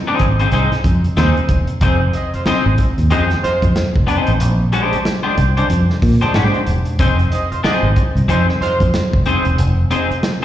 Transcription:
0.07 clean electric guitar C4 D#4 G#4 C5
0.19 fingered electric bass G#1, kick, closed hi-hat
0.39 clean electric guitar C4 D#4 G#4 C5, closed hi-hat
0.52 fingered electric bass C2, clean electric guitar C4 D#4 G#4 C5, closed hi-hat
0.72 snare, closed hi-hat
0.84 fingered electric bass F2, kick, closed hi-hat
1.04 closed hi-hat
1.17 fingered electric bass D#2, clean electric guitar C4 D#4 G#4 C5, snare, closed hi-hat
1.37 closed hi-hat
1.49 fingered electric bass E1, kick, closed hi-hat
1.67 closed hi-hat
1.81 fingered electric bass F1, clean electric guitar C4 D#4 G#4 C5, kick, closed hi-hat
2.13 horn section C4 G#4 D#5, closed hi-hat
2.34 horn section G#3 F4 C5, muted fingered electric bass stroke, closed hi-hat
2.46 horn section C4 G#4 D#5, clean electric guitar C4 D#4 G#4 C5, muted fingered electric bass stroke, snare, closed hi-hat
2.66 fingered electric bass G#1
2.78 kick, closed hi-hat
2.98 fingered electric bass D#2, closed hi-hat
3.10 fingered electric bass F2, clean electric guitar C4 D#4 G#4 C5, horn section C4 G#4 D#5, closed hi-hat
3.30 snare, closed hi-hat
3.42 horn section G#3 F4 C5, muted fingered electric bass stroke, snare, closed hi-hat
3.62 fingered electric bass F2, kick, closed hi-hat
3.76 muted fingered electric bass stroke, snare, closed hi-hat
3.96 fingered electric bass F1, kick
4.07 clean electric guitar C4 D#4 G#4 C5, closed hi-hat
4.27 fingered electric bass A1, closed hi-hat
4.40 fingered electric bass A#1, closed hi-hat
4.72 clean electric guitar G#3 D4 G4 C5, closed hi-hat
4.93 muted fingered electric bass stroke, closed hi-hat
5.05 snare, closed hi-hat
5.23 clean electric guitar G#3 D4 G4 C5
5.38 fingered electric bass C2, kick, closed hi-hat
5.57 clean electric guitar G#3 D4 G4 C5, closed hi-hat
5.70 fingered electric bass F2, closed hi-hat
5.90 snare
6.02 fingered electric bass A#2, kick, open hi-hat
6.21 clean electric guitar G#3 D4 G4 C5, closed hi-hat
6.34 fingered electric bass G#2, clean electric guitar G#3 D4 G4 C5, snare, closed hi-hat
6.54 closed hi-hat
6.67 fingered electric bass E1, closed hi-hat
6.85 closed hi-hat
6.99 fingered electric bass F1, clean electric guitar C4 D#4 G#4 C5, kick, closed hi-hat
7.19 closed hi-hat
7.31 horn section C4 G#4 D#5, closed hi-hat
7.51 horn section G#3 F4 C5, muted fingered electric bass stroke, closed hi-hat
7.63 horn section C4 G#4 D#5, clean electric guitar C4 D#4 G#4 C5, muted fingered electric bass stroke, snare, closed hi-hat
7.83 fingered electric bass G#1
7.96 kick, closed hi-hat
8.15 fingered electric bass C2, closed hi-hat
8.28 fingered electric bass F2, horn section G#3 F4 C5, clean electric guitar C4 D#4 G#4 C5, closed hi-hat
8.49 snare
8.60 horn section G#3 F4 C5, muted fingered electric bass stroke, snare, closed hi-hat
8.80 fingered electric bass F2, kick, closed hi-hat
8.94 muted fingered electric bass stroke, snare, closed hi-hat
9.13 fingered electric bass F1, kick
9.26 clean electric guitar C4 D#4 G#4 C5, closed hi-hat
9.45 fingered electric bass E1, closed hi-hat
9.58 fingered electric bass F1, closed hi-hat
9.91 clean electric guitar C4 D#4 G#4 C5, closed hi-hat
10.11 muted fingered electric bass stroke, closed hi-hat
10.23 snare, closed hi-hat
10.42 closed hi-hat

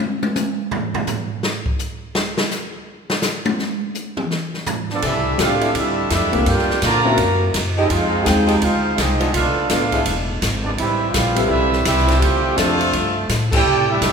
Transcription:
0.00 high tom
0.23 high tom
0.36 hi-hat pedal, high tom
0.71 floor tom
0.94 floor tom
1.07 floor tom, hi-hat pedal
1.43 snare
1.66 kick
1.79 hi-hat pedal
2.15 snare
2.37 snare
2.51 snare, hi-hat pedal
3.10 snare
3.22 snare, hi-hat pedal
3.45 high tom
3.59 snare
3.95 hi-hat pedal
4.17 mid tom
4.31 snare
4.54 snare
4.66 floor tom, hi-hat pedal
4.90 trombone section F3 B3 D4, trumpet section B3 F4 A4 D5, snare
5.02 upright bass C2, saxophone section E3 C4 D4 A4, trombone section G3 A3 E4, trumpet section A4, kick, ride
5.06 trumpet section D4 G4 E5
5.37 upright bass A1, grand piano G3 C4 D4 G4 A4, trombone section G3 A3 F4, trumpet section D4 G4 F5, kick, snare, hi-hat pedal, ride
5.42 trumpet section A4
5.61 saxophone section E3 C4 D4 E4, ride
5.75 upright bass D2, trombone section G3 A3 E4, trumpet section D4 G4 A4 E5, kick, ride
6.10 upright bass F2, trombone section G3 A3 E4, trumpet section D4 A4, kick, snare, hi-hat pedal, ride
6.14 trumpet section G4 E5
6.22 upright bass E2
6.32 upright bass C2, grand piano A#3 C4 D4 F4 A4, ride
6.45 upright bass G2, trombone section A#3 D4 G4, trumpet section F4 A#4 D5 G5, kick, ride
6.58 snare
6.69 muted upright bass stroke, snare
6.82 upright bass A#2, trombone section D3 F3 A#3, trumpet section F4 D5 A5 A#5, kick, snare, hi-hat pedal, ride
7.04 saxophone section F#3 C4 E4 A#4, grand piano A#3 C4 C#4 E4 F#4
7.18 upright bass F#2, kick, ride
7.54 upright bass F#2, kick, snare, hi-hat pedal, ride
7.76 saxophone section F3 G#3 D#4 G4, trombone section D#4, trumpet section D#5
7.80 trumpet section C4 E4 G#4
7.90 upright bass F2, trombone section G#3 C4 F4, trumpet section D#4 G#4 C5 F5, kick, ride
8.24 upright bass D#2, grand piano G#3 C4 D#4 F4 G5, trombone section C4 D#4 G#4, kick, snare, hi-hat pedal, ride
8.28 trumpet section D#4 G#4 C5 G5
8.47 saxophone section F3 G#3 D#4 G4, ride
8.62 upright bass D2, trombone section G#3 C4 F4, trumpet section D#4 G#4 C5 F5, kick, ride
8.97 upright bass C2, trombone section G#3 C4 D#4, trumpet section C4 G4 G#4 D#5, kick, snare, hi-hat pedal, ride
9.19 saxophone section F3 B3 D4 F4, ride
9.33 upright bass B1, trombone section A3 D4 F4, trumpet section D4 A4 B4 F5, kick, ride
9.56 muted upright bass stroke
9.69 upright bass A1, grand piano A3 B3 D4 F4 A4, trombone section A3 D4 F4, trumpet section A4 B4 F5, kick, snare, hi-hat pedal, ride
9.73 trumpet section D4
9.92 saxophone section F3 D4 E4 G#4, kick, ride
10.06 upright bass E1, kick, ride
10.42 upright bass G#1, kick, snare, hi-hat pedal, ride
10.63 trombone section G#3 B3 D4, trumpet section B3 F4 G#4 D5
10.78 upright bass A1, trombone section G3 C4 E4, trumpet section C4 G4 B4 E5, kick, ride
11.12 upright bass A#1, trombone section G3 C4 F4, trumpet section B4, kick, snare, hi-hat pedal, ride
11.16 trumpet section C4 G4 F5
11.35 grand piano G3 C4 E4 A4 B4, ride
11.47 upright bass B1, trombone section G3 C4 E4, kick
11.51 trumpet section C4 G4 B4 E5
11.73 snare
11.85 upright bass C2, trombone section G3 C4 E4, trumpet section C4 G4 B4 E5, kick, snare, hi-hat pedal, ride
11.98 snare
12.07 saxophone section F3 D4 E4 C5, snare, ride
12.19 upright bass D2, trombone section A3 C4 G4, trumpet section F4 C5 E5 G5, kick, ride
12.57 upright bass F2, trombone section C3 F3 A3, grand piano F3 C4 D4 A4 E5, trumpet section F4 C5 E5 A5, kick, snare, hi-hat pedal, ride
12.81 ride
12.93 upright bass G2, kick, ride
13.29 upright bass A2, kick, snare, hi-hat pedal, ride
13.52 saxophone section E3 C4 D4 A4, trombone section A3 E4 G4, trumpet section E4 A4 D5 G5, kick, crash
13.65 upright bass C3
13.90 trombone section G3 A3 E4, trumpet section D4 G4 A4 E5
14.01 upright bass G2, kick, snare, hi-hat pedal, ride

